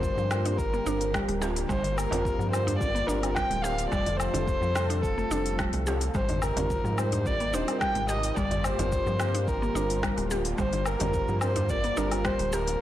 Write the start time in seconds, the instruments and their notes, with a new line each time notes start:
Already playing: analog synth bass G1, analog synth pad D3 G3 A#3 F4 G4, felt piano G3 C4 F4 A#4, kamancheh C5
0.03 kick, shaker
0.17 analog synth bass G2, synth pluck F3, shaker
0.30 felt piano G3 C4 F4 A#4, snare, low woodblock, shaker
0.45 synth pluck D4, open hi-hat, darbuka ka, shaker
0.58 analog synth bass G1, kamancheh A#4, kick, shaker
0.74 synth pluck A#3, shaker
0.85 analog synth bass G1, felt piano G3 C4 F4 A#4, synth pluck D4, darbuka ka, shaker
1.01 open hi-hat, darbuka tek, shaker
1.14 synth pluck G3, kick, snare, shaker
1.28 analog synth bass D1, synth pluck G3, open hi-hat, darbuka ka, shaker
1.41 felt piano G3 C4 F4 A#4, synth pluck G4, darbuka tek, shaker
1.56 open hi-hat, darbuka ka, shaker
1.69 analog synth bass G1, synth pluck G3, kamancheh C5, kick, darbuka tek, shaker
1.84 synth pluck D3, open hi-hat, shaker
1.97 kamancheh A#4, low woodblock, shaker
2.11 analog synth bass G1, synth pluck D3, felt piano G3 C4 F4 A#4, open hi-hat, darbuka tek, darbuka dum, shaker
2.25 kick, shaker
2.39 analog synth bass G2, synth pluck F3, darbuka ka, shaker
2.52 felt piano G3 C4 F4 A#4, kamancheh C5, low woodblock, shaker
2.67 synth pluck D4, open hi-hat, darbuka ka, darbuka dum, shaker
2.79 analog synth bass G1, felt piano G3 C4 F4 A#4, kamancheh D5, kick, shaker
2.95 synth pluck A#3, open hi-hat, shaker
3.07 analog synth bass G1, felt piano G3 C4 F4 D5, synth pluck D4, kamancheh A#4, darbuka tek, shaker
3.22 felt piano G3 C4 F4 A#4, open hi-hat, low woodblock, shaker
3.34 synth pluck G3, kamancheh G5, kick, snare, shaker
3.50 analog synth bass D1, synth pluck G3, open hi-hat, darbuka ka, shaker
3.62 synth pluck G4, kamancheh F5, darbuka tek, shaker
3.78 open hi-hat, darbuka ka, shaker
3.90 analog synth bass F1, analog synth pad C3 F3 A3 A4, synth pluck G3, kamancheh D5, kick, darbuka tek, shaker
4.06 synth pluck D3, open hi-hat, darbuka dum, shaker
4.18 kamancheh C5, low woodblock, shaker
4.34 analog synth bass F1, synth pluck D3, felt piano G3 C4 F4 A4, open hi-hat, darbuka tek, darbuka dum, shaker
4.48 kick, shaker
4.61 analog synth bass F2, synth pluck F3, shaker
4.75 felt piano G3 C4 F4 A4, snare, low woodblock, shaker
4.90 synth pluck D4, open hi-hat, darbuka ka, shaker
5.02 analog synth bass F1, kamancheh A4, kick, shaker
5.18 synth pluck A3, shaker
5.30 analog synth bass F1, felt piano G3 C4 F4 A4, synth pluck D4, shaker
5.46 open hi-hat, darbuka tek, shaker
5.59 synth pluck G3, kick, snare, shaker
5.73 analog synth bass C2, synth pluck G3, open hi-hat, darbuka ka, shaker
5.86 felt piano G3 C4 F4 A4, synth pluck G4, darbuka tek, shaker
6.01 open hi-hat, darbuka ka, shaker
6.14 analog synth bass G#1, synth pluck G3, analog synth pad G3 D#4 G4, kamancheh C5, kick, darbuka tek, shaker
6.29 synth pluck D3, open hi-hat, darbuka dum, shaker
6.42 kamancheh A#4, low woodblock, shaker
6.56 analog synth bass G#1, synth pluck D3, felt piano G3 C4 F4 A#4, open hi-hat, darbuka tek, darbuka dum, shaker
6.70 kick, shaker
6.84 analog synth bass G#2, synth pluck F3, darbuka ka, shaker
6.97 felt piano G3 C4 F4 A#4, kamancheh C5, low woodblock, shaker
7.12 synth pluck D4, open hi-hat, darbuka ka, darbuka dum, shaker
7.25 analog synth bass G#1, felt piano G3 C4 F4 A#4, kamancheh D5, kick, shaker
7.40 synth pluck A#3, open hi-hat, shaker
7.53 analog synth bass D#1, felt piano G3 C4 F4 D#5, synth pluck D4, kamancheh C5, darbuka tek, shaker
7.66 felt piano G3 C4 F4, open hi-hat, low woodblock, shaker
7.70 felt piano A#4
7.81 synth pluck G3, kamancheh G5, kick, snare, shaker
7.95 analog synth bass G#1, synth pluck G3, open hi-hat, darbuka ka, shaker
8.09 synth pluck G4, kamancheh D#5, darbuka tek, shaker
8.23 open hi-hat, darbuka ka, shaker
8.36 analog synth bass G1, analog synth pad D3 A#3 F4, synth pluck G3, kamancheh D5, kick, darbuka tek, shaker
8.51 synth pluck D3, open hi-hat, darbuka dum, shaker
8.64 kamancheh C5, low woodblock, shaker
8.78 analog synth bass G1, synth pluck D3, felt piano G3 C4 F4 A#4, open hi-hat, darbuka tek, darbuka dum, shaker
8.92 kick, shaker
9.06 analog synth bass G2, synth pluck F3, shaker
9.18 felt piano G3 C4 F4 A#4, snare, low woodblock, shaker
9.35 synth pluck D4, open hi-hat, darbuka ka, shaker
9.48 analog synth bass G1, kamancheh A#4, kick, shaker
9.62 synth pluck A#3, shaker
9.74 analog synth bass G1, felt piano G3 C4 F4 A#4, synth pluck D4, darbuka ka, shaker
9.90 open hi-hat, darbuka tek, shaker
10.03 synth pluck G3, kick, snare, shaker
10.17 analog synth bass D1, synth pluck G3, open hi-hat, darbuka ka, shaker
10.29 felt piano G3 C4 F4 A#4, synth pluck G4, darbuka tek, shaker
10.45 open hi-hat, darbuka ka, shaker
10.58 analog synth bass G1, synth pluck G3, kamancheh C5, kick, darbuka tek, shaker
10.73 synth pluck D3, open hi-hat, shaker
10.86 kamancheh A#4, low woodblock, shaker
10.99 analog synth bass G1, synth pluck D3, felt piano G3 C4 F4 A#4, open hi-hat, darbuka tek, darbuka dum, shaker
11.14 kick, shaker
11.28 analog synth bass G2, synth pluck F3, darbuka ka, shaker
11.40 felt piano G3 C4 F4 A#4, kamancheh C5, low woodblock, shaker
11.56 synth pluck D4, open hi-hat, darbuka ka, darbuka dum, shaker
11.68 analog synth bass G1, felt piano G3 C4 F4 A#4, kamancheh D5, kick, shaker
11.84 synth pluck A#3, open hi-hat, shaker
11.96 analog synth bass G1, felt piano G3 C4 F4 D5, synth pluck D4, kamancheh A#4, darbuka tek, shaker
12.09 felt piano G3 C4 F4, open hi-hat, low woodblock, shaker
12.13 felt piano A#4
12.25 synth pluck G3, kamancheh C5, kick, snare, shaker
12.39 analog synth bass D1, synth pluck G3, open hi-hat, darbuka ka, shaker
12.53 synth pluck G4, kamancheh A#4, darbuka tek, shaker
12.68 open hi-hat, darbuka ka, shaker